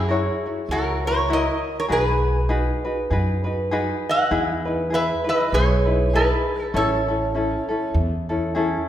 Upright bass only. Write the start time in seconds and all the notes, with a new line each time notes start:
Already playing: F#2
0.69 C#2
1.90 B1
3.11 F#2
4.31 E2
5.52 B1
6.74 A1
7.94 E2